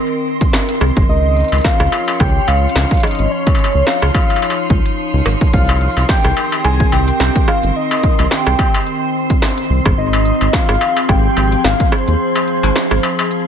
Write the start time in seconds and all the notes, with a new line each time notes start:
Already playing: D#3 C4 A#4 C6
0.41 kick, closed hi-hat
0.53 snare
0.69 closed hi-hat
0.81 C2, struck metal
0.97 G1, kick, closed hi-hat
1.09 C#2 F3 C#4 C#5 D#5
1.37 closed hi-hat
1.41 closed hi-hat
1.44 closed hi-hat
1.48 C#2, closed hi-hat
1.52 closed hi-hat, struck metal
1.55 closed hi-hat
1.58 closed hi-hat
1.61 snare, closed hi-hat
1.64 F5, kick, closed hi-hat
1.80 C#2, struck metal
1.92 closed hi-hat, struck metal
2.08 struck metal
2.20 C#2 G5, kick, closed hi-hat, struck metal
2.48 C#2 F5, struck metal
2.69 closed hi-hat
2.76 C#2, snare
2.91 kick, closed hi-hat
2.94 closed hi-hat
2.97 closed hi-hat
3.00 closed hi-hat
3.03 D#5, closed hi-hat, struck metal
3.07 closed hi-hat
3.11 closed hi-hat
3.15 closed hi-hat
3.19 G#1, closed hi-hat
3.31 D#4 C#5
3.47 kick, struck metal
3.55 struck metal
3.59 closed hi-hat
3.64 struck metal
3.75 C#2
3.87 F5, snare, closed hi-hat
4.02 C#2, struck metal
4.14 kick, closed hi-hat, struck metal
4.30 struck metal
4.36 struck metal
4.42 closed hi-hat, struck metal
4.50 struck metal
4.70 C#2, kick
4.86 closed hi-hat
5.13 C#2
5.26 G#1, struck metal
5.41 kick, closed hi-hat
5.53 C2 D#3 C4 A#4 F5, kick
5.69 struck metal
5.81 closed hi-hat
5.97 C2, struck metal
6.09 G5, kick, snare, closed hi-hat
6.24 C2, struck metal, cabasa
6.37 closed hi-hat, struck metal
6.52 struck metal
6.65 C2 G#5, closed hi-hat, struck metal
6.80 kick
6.92 C2 G5, struck metal
7.08 closed hi-hat
7.20 C2, snare
7.36 kick, closed hi-hat
7.48 F5, struck metal
7.63 G1, closed hi-hat
7.76 C5 D#5
7.91 struck metal
8.03 kick, closed hi-hat
8.19 C2, struck metal
8.31 G5, snare, closed hi-hat
8.47 C2, struck metal, cabasa
8.59 kick, closed hi-hat, struck metal
8.74 struck metal
8.87 closed hi-hat
9.30 kick, closed hi-hat
9.42 snare
9.58 closed hi-hat
9.70 C2
9.86 G1, kick, closed hi-hat, struck metal
9.98 G#1 F3 G#4 D#5
10.13 struck metal
10.25 closed hi-hat
10.41 G#1, struck metal
10.53 F5, kick, snare, closed hi-hat
10.69 G#1, struck metal, cabasa
10.81 closed hi-hat, struck metal
10.97 struck metal
11.09 G#1 G5, kick, closed hi-hat, struck metal
11.37 G#1, struck metal
11.52 closed hi-hat
11.64 G#1 F5, snare
11.80 kick, closed hi-hat
11.92 C5, struck metal
12.08 D#2, closed hi-hat
12.36 struck metal
12.48 closed hi-hat
12.63 G#1, struck metal
12.76 snare, closed hi-hat
12.91 G#1, struck metal, cabasa
13.03 struck metal
13.19 struck metal
13.31 closed hi-hat